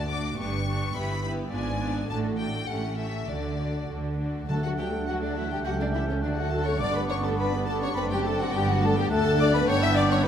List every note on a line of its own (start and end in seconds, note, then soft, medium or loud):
0.00 0.33 D2 medium
0.00 0.10 D5 medium
0.00 0.10 A5 medium
0.10 0.38 A3 soft
0.10 0.38 D4 soft
0.10 0.39 F#4 soft
0.10 0.39 D5 soft
0.10 0.39 D6 medium
0.38 0.90 G1 medium
0.38 0.90 G2 medium
0.38 0.67 B3 medium
0.38 0.67 D4 soft
0.38 0.66 G4 soft
0.38 0.66 B4 soft
0.38 0.94 C#6 medium
0.67 0.95 B3 soft
0.67 0.96 D4 soft
0.67 0.94 G4 soft
0.67 0.95 B4 soft
0.96 1.46 G1 medium
0.96 1.47 G2 medium
0.96 1.23 B3 soft
0.96 1.23 E4 soft
0.96 1.22 G4 medium
0.96 1.22 B4 medium
0.96 1.22 B5 medium
1.23 1.51 B3 soft
1.23 1.52 E4 soft
1.23 1.52 G4 medium
1.23 1.52 B4 soft
1.23 1.31 B5 medium
1.52 2.03 G#1 medium
1.52 2.03 G#2 medium
1.52 1.80 B3 soft
1.52 1.80 D4 soft
1.52 1.80 F4 soft
1.52 1.80 D5 soft
1.52 2.09 G#5 medium
1.81 2.10 B3 soft
1.81 2.09 D4 soft
1.81 2.10 F4 soft
1.81 2.10 D5 soft
2.09 2.62 A1 medium
2.09 2.62 A2 medium
2.09 2.39 A3 soft
2.09 2.39 D4 soft
2.09 2.38 F#4 medium
2.09 2.38 A4 medium
2.09 2.18 A5 medium
2.39 2.68 A3 soft
2.39 2.69 D4 soft
2.39 2.68 F#4 soft
2.39 2.68 A4 soft
2.39 2.68 G5 medium
2.69 3.22 A1 soft
2.69 3.23 A2 medium
2.69 2.98 A3 soft
2.69 2.97 C#4 soft
2.69 2.98 G4 soft
2.69 2.98 A4 soft
2.69 2.99 F#5 medium
2.99 3.27 A3 soft
2.99 3.29 C#4 soft
2.99 3.29 G4 soft
2.99 3.29 A4 soft
2.99 3.29 E5 medium
3.29 3.83 D2 soft
3.29 3.83 D3 medium
3.29 3.58 A3 soft
3.29 3.59 D4 soft
3.29 3.58 F#4 soft
3.29 3.58 A4 soft
3.29 3.90 D5 medium
3.59 3.88 A3 soft
3.59 3.88 D4 soft
3.59 3.89 F#4 soft
3.59 3.89 A4 soft
3.89 4.43 D2 soft
3.89 4.43 D3 soft
3.89 4.18 A3 soft
3.89 4.17 D4 soft
3.89 4.19 F#4 soft
3.89 4.19 A4 soft
4.18 4.49 A3 soft
4.18 4.48 D4 soft
4.18 4.49 F#4 soft
4.18 4.48 A4 soft
4.48 5.61 D2 soft
4.48 5.62 D2 medium
4.48 5.33 D3 medium
4.48 4.63 F#3 soft
4.48 4.56 A3 medium
4.48 6.83 A3 soft
4.48 5.67 D4 soft
4.48 4.63 F#4 soft
4.48 4.63 A4 medium
4.48 5.66 F#5 soft
4.48 4.55 A5 medium
4.48 4.63 A5 medium
4.63 4.78 F#3 soft
4.63 4.79 A3 soft
4.63 4.71 F#4 medium
4.63 4.79 A4 soft
4.63 4.69 F#5 soft
4.63 4.79 F#5 soft
4.78 4.94 F#3 soft
4.78 5.07 G3 medium
4.78 4.94 F#4 soft
4.78 4.87 G4 medium
4.78 5.07 G5 soft
4.78 5.08 G5 medium
4.94 5.08 A3 soft
4.94 5.08 A4 soft
5.07 5.14 F#3 medium
5.07 5.22 F#3 soft
5.07 5.22 F#4 medium
5.07 5.21 F#4 soft
5.07 5.13 F#5 medium
5.07 5.14 F#5 medium
5.21 5.37 D3 soft
5.21 5.36 A3 soft
5.21 5.36 D4 medium
5.21 5.36 A4 soft
5.21 5.36 D5 soft
5.21 5.36 D5 medium
5.35 5.51 E3 soft
5.35 5.51 F#3 soft
5.35 5.51 E4 medium
5.35 5.51 F#4 soft
5.35 5.50 E5 soft
5.35 5.51 E5 medium
5.50 5.58 G3 medium
5.50 5.65 A3 soft
5.50 5.58 G4 medium
5.50 5.65 A4 soft
5.50 5.65 G5 soft
5.50 5.65 G5 medium
5.64 6.22 C#2 medium
5.64 6.23 C#2 medium
5.64 5.81 F#3 medium
5.64 5.78 G3 soft
5.64 6.24 C#4 soft
5.64 5.71 F#4 medium
5.64 5.78 G4 soft
5.64 5.79 F#5 medium
5.64 5.72 F#5 medium
5.64 6.24 G5 soft
5.78 5.96 D3 medium
5.78 5.94 A3 soft
5.78 5.86 D4 medium
5.78 5.94 A4 soft
5.78 5.93 D5 soft
5.78 5.85 D5 soft
5.92 6.08 G3 soft
5.92 6.00 E4 medium
5.92 6.08 G4 soft
5.92 6.08 E5 medium
5.96 6.10 E3 medium
6.07 6.22 A3 soft
6.07 6.23 A4 soft
6.07 6.14 C#5 soft
6.11 6.25 C#3 soft
6.11 6.16 C#4 medium
6.22 6.80 D2 medium
6.22 6.81 D2 medium
6.22 6.31 D3 medium
6.22 6.36 F#3 soft
6.22 8.52 D4 medium
6.22 6.30 D4 medium
6.22 6.36 F#4 soft
6.22 6.37 D5 medium
6.22 6.81 F#5 soft
6.37 6.53 F#3 medium
6.37 6.52 A3 soft
6.37 6.52 F#4 medium
6.37 6.52 A4 soft
6.37 6.52 F#5 medium
6.37 6.53 F#5 medium
6.51 6.67 F#3 soft
6.51 6.68 A3 medium
6.51 6.66 F#4 soft
6.51 6.66 A4 medium
6.51 6.66 A5 medium
6.66 6.80 A3 soft
6.66 6.80 A4 soft
6.66 6.81 C#5 medium
6.66 6.80 C#6 medium
6.66 6.81 C#6 medium
6.70 6.76 C#4 medium
6.79 7.96 G1 medium
6.79 7.96 G2 medium
6.79 6.94 G3 soft
6.79 7.96 B3 medium
6.79 6.94 D4 soft
6.79 6.95 D5 medium
6.79 9.07 D5 medium
6.79 6.94 D6 medium
6.84 6.89 D4 medium
6.93 7.10 B3 soft
6.93 7.10 G4 soft
6.93 7.01 B4 medium
6.93 7.09 B5 medium
6.98 7.11 B3 medium
7.08 7.24 G3 soft
7.08 7.24 D4 soft
7.08 7.14 C#5 medium
7.08 7.23 C#6 medium
7.13 7.25 C#4 medium
7.23 7.33 A3 medium
7.23 7.38 B3 soft
7.23 7.38 G4 soft
7.23 7.38 A4 medium
7.23 7.29 A5 medium
7.23 7.38 A5 medium
7.37 7.52 G3 soft
7.37 7.52 B3 medium
7.37 7.52 D4 soft
7.37 7.66 B4 medium
7.37 7.66 B5 medium
7.37 7.45 B5 medium
7.52 7.67 B3 soft
7.52 7.67 G4 soft
7.66 7.82 G3 soft
7.66 7.74 A3 medium
7.66 7.82 D4 soft
7.66 7.81 A4 medium
7.66 7.81 A5 medium
7.66 7.73 A5 medium
7.80 7.97 B3 soft
7.80 7.87 C#4 medium
7.80 7.88 C#5 medium
7.80 7.95 C#6 medium
7.84 7.97 G4 soft
7.94 8.52 F#1 medium
7.94 8.52 F#2 medium
7.94 8.02 B3 medium
7.94 8.54 C4 medium
7.94 8.10 D4 soft
7.94 8.02 B4 medium
7.94 8.00 B5 medium
7.94 8.10 B5 medium
7.98 8.10 A3 soft
8.09 8.16 G3 medium
8.09 8.26 C4 soft
8.09 8.26 F#4 soft
8.09 8.25 G4 medium
8.09 8.24 G5 medium
8.09 8.16 G5 medium
8.24 8.31 A3 medium
8.24 8.39 A3 soft
8.24 8.40 D4 soft
8.24 8.39 A4 medium
8.24 8.38 A5 medium
8.38 8.54 F#3 medium
8.38 8.53 C4 medium
8.38 8.54 F#4 medium
8.38 8.53 F#5 medium
8.52 9.10 G1 medium
8.52 9.09 G2 medium
8.52 8.68 G3 medium
8.52 8.67 G3 medium
8.52 9.10 B3 medium
8.52 9.09 D4 medium
8.52 8.67 D4 medium
8.52 8.68 G4 medium
8.52 8.67 G5 medium
8.52 8.68 G5 medium
8.66 8.72 F#3 medium
8.66 8.82 B3 medium
8.66 8.82 G4 soft
8.66 8.82 F#5 medium
8.70 8.83 F#4 medium
8.80 8.97 G3 medium
8.80 8.95 A3 medium
8.80 8.97 D4 medium
8.80 8.97 A4 medium
8.80 8.96 A5 medium
8.80 8.90 A5 medium
8.96 9.10 G3 medium
8.96 9.11 B3 soft
8.96 9.11 G4 medium
8.96 9.02 G5 medium
8.96 9.11 G5 medium
9.09 9.64 D2 medium
9.09 9.64 F#3 medium
9.09 9.38 A3 medium
9.09 9.69 A3 medium
9.09 9.64 D4 medium
9.09 10.21 D4 medium
9.09 9.39 A4 loud
9.09 9.70 F#5 medium
9.09 9.17 A5 medium
9.09 9.39 A5 medium
9.38 9.52 D4 medium
9.38 9.54 D5 medium
9.38 9.46 D6 medium
9.38 9.54 D6 medium
9.53 9.68 B3 medium
9.53 9.68 B4 medium
9.53 9.59 B5 medium
9.53 9.67 B5 medium
9.66 10.28 G1 medium
9.66 10.28 G2 medium
9.66 10.28 B3 medium
9.66 10.24 B3 medium
9.66 9.82 C#4 medium
9.66 10.26 D4 medium
9.66 9.82 C#5 loud
9.66 10.22 G5 medium
9.66 9.81 C#6 medium
9.66 9.82 C#6 medium
9.80 9.95 E4 medium
9.80 9.97 E5 loud
9.80 9.96 E6 medium
9.80 9.88 E6 medium
9.95 10.11 D4 medium
9.95 10.10 D5 medium
9.95 10.10 D6 medium
9.95 10.03 D6 medium
10.10 10.25 C#4 medium
10.10 10.24 C#5 loud
10.10 10.17 C#6 medium
10.22 10.28 B3 medium
10.22 10.28 E4 medium
10.22 10.28 B4 loud
10.22 10.28 G5 medium
10.22 10.28 B5 medium